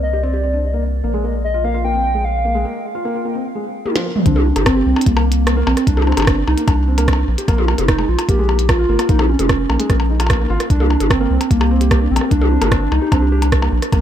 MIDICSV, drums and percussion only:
0, 0, Header, 1, 3, 480
1, 0, Start_track
1, 0, Key_signature, -3, "minor"
1, 0, Tempo, 402685
1, 1236, Time_signature, 4, 2, 24, 8
1, 16702, End_track
2, 0, Start_track
2, 0, Title_t, "Percussion blips"
2, 5436, Note_on_c, 9, 60, 57
2, 5555, Note_off_c, 9, 60, 0
2, 5556, Note_on_c, 9, 60, 82
2, 5675, Note_off_c, 9, 60, 0
2, 5917, Note_on_c, 9, 60, 55
2, 6036, Note_off_c, 9, 60, 0
2, 6159, Note_on_c, 9, 60, 84
2, 6278, Note_off_c, 9, 60, 0
2, 6518, Note_on_c, 9, 60, 56
2, 6637, Note_off_c, 9, 60, 0
2, 6758, Note_on_c, 9, 60, 85
2, 6877, Note_off_c, 9, 60, 0
2, 7118, Note_on_c, 9, 60, 24
2, 7178, Note_off_c, 9, 60, 0
2, 7178, Note_on_c, 9, 60, 31
2, 7237, Note_off_c, 9, 60, 0
2, 7237, Note_on_c, 9, 60, 37
2, 7297, Note_off_c, 9, 60, 0
2, 7297, Note_on_c, 9, 60, 45
2, 7357, Note_off_c, 9, 60, 0
2, 7357, Note_on_c, 9, 60, 78
2, 7387, Note_off_c, 9, 60, 0
2, 7387, Note_on_c, 9, 60, 63
2, 7417, Note_off_c, 9, 60, 0
2, 7417, Note_on_c, 9, 60, 53
2, 7447, Note_off_c, 9, 60, 0
2, 7447, Note_on_c, 9, 60, 42
2, 7477, Note_off_c, 9, 60, 0
2, 7477, Note_on_c, 9, 60, 35
2, 7508, Note_off_c, 9, 60, 0
2, 7508, Note_on_c, 9, 60, 28
2, 7539, Note_off_c, 9, 60, 0
2, 7539, Note_on_c, 9, 60, 23
2, 7568, Note_off_c, 9, 60, 0
2, 7568, Note_on_c, 9, 60, 19
2, 7687, Note_off_c, 9, 60, 0
2, 7718, Note_on_c, 9, 60, 54
2, 7837, Note_off_c, 9, 60, 0
2, 7958, Note_on_c, 9, 60, 83
2, 8077, Note_off_c, 9, 60, 0
2, 8318, Note_on_c, 9, 60, 54
2, 8437, Note_off_c, 9, 60, 0
2, 8498, Note_on_c, 9, 60, 84
2, 8617, Note_off_c, 9, 60, 0
2, 8919, Note_on_c, 9, 60, 53
2, 9038, Note_off_c, 9, 60, 0
2, 9158, Note_on_c, 9, 60, 75
2, 9277, Note_off_c, 9, 60, 0
2, 9518, Note_on_c, 9, 60, 54
2, 9637, Note_off_c, 9, 60, 0
2, 9758, Note_on_c, 9, 60, 76
2, 9877, Note_off_c, 9, 60, 0
2, 10118, Note_on_c, 9, 60, 52
2, 10238, Note_off_c, 9, 60, 0
2, 10358, Note_on_c, 9, 60, 82
2, 10477, Note_off_c, 9, 60, 0
2, 10717, Note_on_c, 9, 60, 52
2, 10836, Note_off_c, 9, 60, 0
2, 10956, Note_on_c, 9, 60, 78
2, 11076, Note_off_c, 9, 60, 0
2, 11317, Note_on_c, 9, 60, 50
2, 11436, Note_off_c, 9, 60, 0
2, 11558, Note_on_c, 9, 60, 79
2, 11677, Note_off_c, 9, 60, 0
2, 11917, Note_on_c, 9, 60, 50
2, 12036, Note_off_c, 9, 60, 0
2, 12156, Note_on_c, 9, 60, 75
2, 12236, Note_off_c, 9, 60, 0
2, 12236, Note_on_c, 9, 60, 60
2, 12317, Note_off_c, 9, 60, 0
2, 12317, Note_on_c, 9, 60, 48
2, 12436, Note_off_c, 9, 60, 0
2, 12998, Note_on_c, 9, 60, 50
2, 13117, Note_off_c, 9, 60, 0
2, 13238, Note_on_c, 9, 60, 78
2, 13358, Note_off_c, 9, 60, 0
2, 13598, Note_on_c, 9, 60, 51
2, 13717, Note_off_c, 9, 60, 0
2, 13838, Note_on_c, 9, 60, 76
2, 13958, Note_off_c, 9, 60, 0
2, 14198, Note_on_c, 9, 60, 52
2, 14317, Note_off_c, 9, 60, 0
2, 14497, Note_on_c, 9, 60, 79
2, 14616, Note_off_c, 9, 60, 0
2, 15038, Note_on_c, 9, 60, 80
2, 15157, Note_off_c, 9, 60, 0
2, 15398, Note_on_c, 9, 60, 57
2, 15518, Note_off_c, 9, 60, 0
2, 15637, Note_on_c, 9, 60, 81
2, 15757, Note_off_c, 9, 60, 0
2, 15998, Note_on_c, 9, 60, 53
2, 16117, Note_off_c, 9, 60, 0
2, 16238, Note_on_c, 9, 60, 80
2, 16357, Note_off_c, 9, 60, 0
2, 16598, Note_on_c, 9, 60, 54
2, 16702, Note_off_c, 9, 60, 0
2, 16702, End_track
3, 0, Start_track
3, 0, Title_t, "Drums"
3, 4596, Note_on_c, 9, 48, 62
3, 4715, Note_off_c, 9, 48, 0
3, 4715, Note_on_c, 9, 38, 61
3, 4834, Note_off_c, 9, 38, 0
3, 4956, Note_on_c, 9, 45, 80
3, 5075, Note_off_c, 9, 45, 0
3, 5076, Note_on_c, 9, 36, 121
3, 5076, Note_on_c, 9, 42, 56
3, 5195, Note_off_c, 9, 36, 0
3, 5195, Note_off_c, 9, 42, 0
3, 5196, Note_on_c, 9, 48, 94
3, 5315, Note_off_c, 9, 48, 0
3, 5436, Note_on_c, 9, 42, 70
3, 5436, Note_on_c, 9, 48, 96
3, 5555, Note_off_c, 9, 42, 0
3, 5555, Note_off_c, 9, 48, 0
3, 5556, Note_on_c, 9, 36, 109
3, 5556, Note_on_c, 9, 37, 120
3, 5556, Note_on_c, 9, 42, 53
3, 5675, Note_off_c, 9, 36, 0
3, 5675, Note_off_c, 9, 37, 0
3, 5675, Note_off_c, 9, 42, 0
3, 5977, Note_on_c, 9, 42, 69
3, 6036, Note_on_c, 9, 36, 119
3, 6037, Note_off_c, 9, 42, 0
3, 6037, Note_on_c, 9, 42, 58
3, 6155, Note_off_c, 9, 36, 0
3, 6156, Note_off_c, 9, 42, 0
3, 6338, Note_on_c, 9, 42, 73
3, 6457, Note_off_c, 9, 42, 0
3, 6518, Note_on_c, 9, 37, 123
3, 6518, Note_on_c, 9, 42, 58
3, 6637, Note_off_c, 9, 37, 0
3, 6637, Note_off_c, 9, 42, 0
3, 6878, Note_on_c, 9, 37, 63
3, 6878, Note_on_c, 9, 42, 69
3, 6997, Note_on_c, 9, 36, 110
3, 6998, Note_off_c, 9, 37, 0
3, 6998, Note_off_c, 9, 42, 0
3, 6999, Note_on_c, 9, 42, 57
3, 7116, Note_off_c, 9, 36, 0
3, 7118, Note_off_c, 9, 42, 0
3, 7118, Note_on_c, 9, 48, 94
3, 7237, Note_off_c, 9, 48, 0
3, 7357, Note_on_c, 9, 42, 72
3, 7357, Note_on_c, 9, 48, 92
3, 7476, Note_off_c, 9, 42, 0
3, 7476, Note_off_c, 9, 48, 0
3, 7477, Note_on_c, 9, 36, 127
3, 7477, Note_on_c, 9, 37, 126
3, 7477, Note_on_c, 9, 42, 55
3, 7596, Note_off_c, 9, 36, 0
3, 7596, Note_off_c, 9, 37, 0
3, 7596, Note_off_c, 9, 42, 0
3, 7838, Note_on_c, 9, 42, 69
3, 7957, Note_off_c, 9, 42, 0
3, 7957, Note_on_c, 9, 36, 127
3, 7958, Note_on_c, 9, 42, 57
3, 8076, Note_off_c, 9, 36, 0
3, 8077, Note_off_c, 9, 42, 0
3, 8318, Note_on_c, 9, 42, 71
3, 8437, Note_off_c, 9, 42, 0
3, 8437, Note_on_c, 9, 36, 110
3, 8439, Note_on_c, 9, 37, 127
3, 8439, Note_on_c, 9, 42, 57
3, 8556, Note_off_c, 9, 36, 0
3, 8558, Note_off_c, 9, 37, 0
3, 8558, Note_off_c, 9, 42, 0
3, 8799, Note_on_c, 9, 42, 70
3, 8917, Note_on_c, 9, 36, 127
3, 8918, Note_off_c, 9, 42, 0
3, 8919, Note_on_c, 9, 42, 54
3, 9036, Note_off_c, 9, 36, 0
3, 9038, Note_off_c, 9, 42, 0
3, 9038, Note_on_c, 9, 48, 90
3, 9157, Note_off_c, 9, 48, 0
3, 9277, Note_on_c, 9, 42, 68
3, 9277, Note_on_c, 9, 48, 89
3, 9396, Note_off_c, 9, 42, 0
3, 9396, Note_off_c, 9, 48, 0
3, 9397, Note_on_c, 9, 36, 127
3, 9398, Note_on_c, 9, 37, 127
3, 9398, Note_on_c, 9, 42, 54
3, 9516, Note_off_c, 9, 36, 0
3, 9517, Note_off_c, 9, 37, 0
3, 9517, Note_off_c, 9, 42, 0
3, 9758, Note_on_c, 9, 42, 69
3, 9877, Note_off_c, 9, 42, 0
3, 9877, Note_on_c, 9, 36, 113
3, 9878, Note_on_c, 9, 42, 59
3, 9996, Note_off_c, 9, 36, 0
3, 9997, Note_off_c, 9, 42, 0
3, 10237, Note_on_c, 9, 42, 70
3, 10357, Note_off_c, 9, 42, 0
3, 10357, Note_on_c, 9, 36, 127
3, 10358, Note_on_c, 9, 37, 127
3, 10358, Note_on_c, 9, 42, 56
3, 10476, Note_off_c, 9, 36, 0
3, 10477, Note_off_c, 9, 37, 0
3, 10477, Note_off_c, 9, 42, 0
3, 10717, Note_on_c, 9, 37, 64
3, 10717, Note_on_c, 9, 42, 70
3, 10836, Note_off_c, 9, 37, 0
3, 10836, Note_off_c, 9, 42, 0
3, 10836, Note_on_c, 9, 42, 52
3, 10837, Note_on_c, 9, 36, 125
3, 10955, Note_off_c, 9, 42, 0
3, 10956, Note_off_c, 9, 36, 0
3, 10956, Note_on_c, 9, 48, 92
3, 11076, Note_off_c, 9, 48, 0
3, 11196, Note_on_c, 9, 42, 66
3, 11196, Note_on_c, 9, 48, 89
3, 11315, Note_off_c, 9, 42, 0
3, 11315, Note_off_c, 9, 48, 0
3, 11317, Note_on_c, 9, 36, 112
3, 11317, Note_on_c, 9, 37, 127
3, 11317, Note_on_c, 9, 42, 52
3, 11436, Note_off_c, 9, 36, 0
3, 11436, Note_off_c, 9, 37, 0
3, 11436, Note_off_c, 9, 42, 0
3, 11677, Note_on_c, 9, 42, 66
3, 11796, Note_off_c, 9, 42, 0
3, 11796, Note_on_c, 9, 36, 122
3, 11797, Note_on_c, 9, 37, 67
3, 11797, Note_on_c, 9, 42, 56
3, 11916, Note_off_c, 9, 36, 0
3, 11916, Note_off_c, 9, 37, 0
3, 11916, Note_off_c, 9, 42, 0
3, 12156, Note_on_c, 9, 42, 67
3, 12276, Note_off_c, 9, 42, 0
3, 12276, Note_on_c, 9, 36, 122
3, 12277, Note_on_c, 9, 37, 127
3, 12277, Note_on_c, 9, 42, 53
3, 12395, Note_off_c, 9, 36, 0
3, 12396, Note_off_c, 9, 37, 0
3, 12396, Note_off_c, 9, 42, 0
3, 12637, Note_on_c, 9, 37, 64
3, 12637, Note_on_c, 9, 42, 65
3, 12756, Note_on_c, 9, 36, 125
3, 12757, Note_off_c, 9, 37, 0
3, 12757, Note_off_c, 9, 42, 0
3, 12757, Note_on_c, 9, 42, 50
3, 12875, Note_off_c, 9, 36, 0
3, 12876, Note_off_c, 9, 42, 0
3, 12877, Note_on_c, 9, 48, 93
3, 12996, Note_off_c, 9, 48, 0
3, 13118, Note_on_c, 9, 42, 65
3, 13118, Note_on_c, 9, 48, 95
3, 13236, Note_on_c, 9, 36, 112
3, 13237, Note_off_c, 9, 42, 0
3, 13237, Note_off_c, 9, 48, 0
3, 13238, Note_on_c, 9, 37, 118
3, 13238, Note_on_c, 9, 42, 50
3, 13355, Note_off_c, 9, 36, 0
3, 13358, Note_off_c, 9, 37, 0
3, 13358, Note_off_c, 9, 42, 0
3, 13598, Note_on_c, 9, 42, 63
3, 13716, Note_on_c, 9, 36, 123
3, 13717, Note_off_c, 9, 42, 0
3, 13718, Note_on_c, 9, 42, 54
3, 13836, Note_off_c, 9, 36, 0
3, 13837, Note_off_c, 9, 42, 0
3, 14078, Note_on_c, 9, 42, 66
3, 14196, Note_on_c, 9, 36, 125
3, 14197, Note_off_c, 9, 42, 0
3, 14198, Note_on_c, 9, 37, 123
3, 14198, Note_on_c, 9, 42, 53
3, 14316, Note_off_c, 9, 36, 0
3, 14317, Note_off_c, 9, 37, 0
3, 14317, Note_off_c, 9, 42, 0
3, 14497, Note_on_c, 9, 42, 65
3, 14556, Note_on_c, 9, 37, 60
3, 14616, Note_off_c, 9, 42, 0
3, 14676, Note_off_c, 9, 37, 0
3, 14676, Note_on_c, 9, 36, 104
3, 14677, Note_on_c, 9, 42, 51
3, 14796, Note_off_c, 9, 36, 0
3, 14797, Note_off_c, 9, 42, 0
3, 14798, Note_on_c, 9, 48, 99
3, 14917, Note_off_c, 9, 48, 0
3, 15038, Note_on_c, 9, 42, 66
3, 15038, Note_on_c, 9, 48, 99
3, 15157, Note_off_c, 9, 42, 0
3, 15157, Note_off_c, 9, 48, 0
3, 15157, Note_on_c, 9, 36, 120
3, 15158, Note_on_c, 9, 37, 117
3, 15158, Note_on_c, 9, 42, 50
3, 15276, Note_off_c, 9, 36, 0
3, 15277, Note_off_c, 9, 37, 0
3, 15277, Note_off_c, 9, 42, 0
3, 15637, Note_on_c, 9, 36, 118
3, 15637, Note_on_c, 9, 42, 52
3, 15756, Note_off_c, 9, 36, 0
3, 15757, Note_off_c, 9, 42, 0
3, 15998, Note_on_c, 9, 42, 63
3, 16117, Note_off_c, 9, 42, 0
3, 16117, Note_on_c, 9, 36, 100
3, 16118, Note_on_c, 9, 37, 121
3, 16118, Note_on_c, 9, 42, 52
3, 16236, Note_off_c, 9, 36, 0
3, 16237, Note_off_c, 9, 37, 0
3, 16237, Note_off_c, 9, 42, 0
3, 16478, Note_on_c, 9, 37, 60
3, 16478, Note_on_c, 9, 42, 63
3, 16597, Note_off_c, 9, 37, 0
3, 16597, Note_off_c, 9, 42, 0
3, 16597, Note_on_c, 9, 36, 118
3, 16598, Note_on_c, 9, 42, 51
3, 16702, Note_off_c, 9, 36, 0
3, 16702, Note_off_c, 9, 42, 0
3, 16702, End_track
0, 0, End_of_file